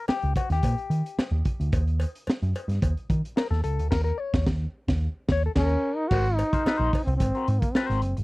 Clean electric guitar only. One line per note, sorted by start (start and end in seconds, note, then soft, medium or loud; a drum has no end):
0.09 0.34 G4 medium
0.37 0.50 F#4 medium
0.52 1.84 G4 medium
3.37 3.50 A#4 medium
3.51 3.63 A4 medium
3.64 3.90 A4 medium
3.91 4.03 A#4 loud
4.04 4.18 A#4 medium
4.18 4.46 C#5 medium
5.32 5.45 C#5 loud
5.46 5.51 A4 medium
5.58 6.08 A#4 medium
6.11 6.26 F#4 medium
6.11 6.26 A#4 medium
6.11 6.27 C5 loud
6.39 muted clean electric guitar stroke soft
6.53 6.64 F#4 medium
6.53 6.64 A#4 medium
6.53 6.63 C5 medium
6.66 6.91 F#4 medium
6.66 6.91 A#4 medium
6.66 6.92 C5 medium
7.08 muted clean electric guitar stroke soft
7.20 muted clean electric guitar stroke soft
7.35 7.47 F#4 medium
7.35 7.48 A#4 medium
7.35 7.48 C5 medium
7.63 muted clean electric guitar stroke soft
7.75 8.00 F#4 medium
7.75 8.00 A#4 loud
7.75 8.01 C5 loud
8.17 muted clean electric guitar stroke soft